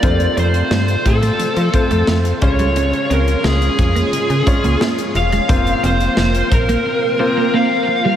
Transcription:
<<
  \new Staff \with { instrumentName = "Lead electric guitar" } { \time 4/4 \key f \mixolydian \tempo 4 = 88 d''8 c''8 c''8 a'4. r8 des''8~ | des''8 bes'8 aes'8 aes'4. r8 f''8~ | f''8 c''4 bes'4. f''4 | }
  \new Staff \with { instrumentName = "Grand piano" } { \time 4/4 \key f \mixolydian <a c' f' c''>4. r4 <a c' f' c''>4 <des aes des' f' des''>8~ | <des aes des' f' des''>4 r4. <aes des' f' des''>4 r8 | <bes c' f' c''>4. r4 <bes c' f' c''>4 r8 | }
  \new Staff \with { instrumentName = "String machine" } { \time 4/4 \key f \mixolydian << { f'1~ | f'1~ | f'1 | } \\ { <a c'>2.~ <a c'>8 <aes des'>8~ | <aes des'>1 | <bes c'>1 | } >> }
  \new Staff \with { instrumentName = "Clean electric guitar" } { \time 4/4 \key f \mixolydian d'16 r16 c'16 r16 a16 r8 a16 r8 c'16 a16 a16 r8 g16 | des'16 r16 c'16 r16 bes16 r8 bes16 r8 c'16 bes16 bes16 r8 aes16 | d'16 r16 c'16 r16 bes16 r8 bes16 r8 c'16 bes16 bes16 r8 g16 | }
  \new Staff \with { instrumentName = "FM bass" } { \clef bass \time 4/4 \key f \mixolydian f,8 f,8 g,8 a,8 f16 f16 r16 f,16 f,8 des,8~ | des,8 des,8 des,8 f,8 des16 des16 r16 des,16 r8 e,,8 | f,,8 f,,8 f,,8 bes,,8 r2 | }
  \new DrumStaff \with { instrumentName = "Drums" } \drummode { \time 4/4 <hh bd>16 hh16 hh16 hh16 sn16 hh16 <hh bd>16 hh16 hh16 hh16 <hh bd>16 hh16 sn16 hh16 <hh bd>16 hh16 | hh16 hh16 hh16 hh16 sn16 hh16 <hh bd>16 hh16 hh16 hh16 <hh bd>16 hh16 sn16 hh16 hh16 hh16 | <hh bd>16 hh16 hh16 hh16 sn16 hh16 <hh bd>16 hh16 r4 r4 | }
>>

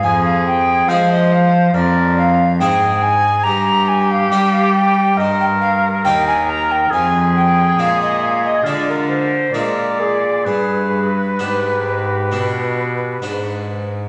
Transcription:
<<
  \new Staff \with { instrumentName = "Recorder" } { \time 4/4 \key g \phrygian \tempo 4 = 69 aes''16 f''16 g''8 f''16 ees''16 f''8 d''8 f''8 g''8 aes''8 | bes''8 aes''16 f''16 g''16 f''16 g''8 ees''16 g''16 f''8 g''16 aes''16 bes''16 g''16 | aes''8 g''8 f''16 ees''16 f''16 ees''16 d''16 bes'16 c''8 bes'8 aes'8 | aes'8. r16 g'2 r4 | }
  \new Staff \with { instrumentName = "Oboe" } { \time 4/4 \key g \phrygian aes'4 c''4 bes'8 r8 aes'4 | g'2 bes'4 bes'4 | aes'2 f'8 r8 d''4 | b'2.~ b'8 r8 | }
  \new Staff \with { instrumentName = "Harpsichord" } { \clef bass \time 4/4 \key g \phrygian f,4 <f aes c' aes'>4 f,4 <aes, aes d' aes'>4 | g,4 <g bes d' g'>4 g,4 <ees, bes ees' g'>4 | f,4 <bes, aes d'>4 <d aes d'>4 <bes, aes d'>4 | g,4 <aes, b d'>4 <b, b d'>4 <aes, b d'>4 | }
  \new Staff \with { instrumentName = "Cello" } { \clef bass \time 4/4 \key g \phrygian f,4 f4 f,4 aes,4 | g,4 g4 g,4 ees,4 | f,4 bes,4 d4 bes,4 | g,4 aes,4 b,4 aes,4 | }
>>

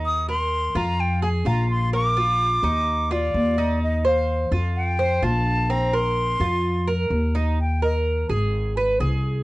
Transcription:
<<
  \new Staff \with { instrumentName = "Flute" } { \time 4/4 \key ees \major \tempo 4 = 127 ees'''8 c'''4 bes''8 g''8 aes''8 bes''8 c'''8 | d'''2~ d'''8 d''4. | ees''8 f''4 r8 g''4 a''4 | bes''8 c'''2 r4. |
g''8 ees''8 r2. | }
  \new Staff \with { instrumentName = "Cuban tres" } { \time 4/4 \key ees \major ees'8 bes'4 f'4 aes'8 f'4 | bes8 f'4 ees'4 f'4 ees'8~ | ees'8 c''4 f'4 c''8 f'4 | c'8 bes'4 f'4 bes'4 ees'8 |
r8 bes'4 aes'4 ces''8 aes'4 | }
  \new Staff \with { instrumentName = "Upright bass" } { \clef bass \time 4/4 \key ees \major ees,4. f,4. bes,,4~ | bes,,4. ees,4. ees,4~ | ees,4. f,4. bes,,4~ | bes,,4. f,4. ees,4~ |
ees,4. aes,,4. c,4 | }
>>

